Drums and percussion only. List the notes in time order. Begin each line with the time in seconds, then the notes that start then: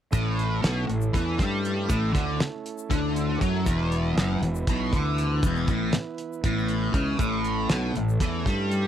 0.13 kick, closed hi-hat, shaker
0.39 closed hi-hat
0.64 snare, closed hi-hat
0.90 closed hi-hat
1.01 shaker
1.14 kick, closed hi-hat, shaker
1.39 kick, snare, closed hi-hat
1.64 closed hi-hat, shaker
1.90 kick, closed hi-hat, shaker
2.15 kick, snare, closed hi-hat
2.40 snare, closed hi-hat
2.66 closed hi-hat
2.78 shaker
2.91 kick, snare, closed hi-hat, shaker
3.16 closed hi-hat
3.41 kick, closed hi-hat, shaker
3.66 kick, closed hi-hat, shaker
3.92 closed hi-hat
4.17 snare, closed hi-hat
4.42 closed hi-hat
4.55 shaker
4.67 kick, closed hi-hat, shaker
4.93 kick, closed hi-hat
5.18 closed hi-hat, shaker
5.43 kick, closed hi-hat, shaker
5.56 shaker
5.68 kick, closed hi-hat
5.93 snare, closed hi-hat
6.18 closed hi-hat, shaker
6.33 shaker
6.44 kick, closed hi-hat
6.58 shaker
6.68 closed hi-hat
6.94 kick, closed hi-hat
7.19 kick, closed hi-hat, shaker
7.44 closed hi-hat
7.69 snare, closed hi-hat
7.95 closed hi-hat
8.09 shaker
8.20 kick, snare, closed hi-hat, shaker
8.46 kick, snare, closed hi-hat
8.71 closed hi-hat, shaker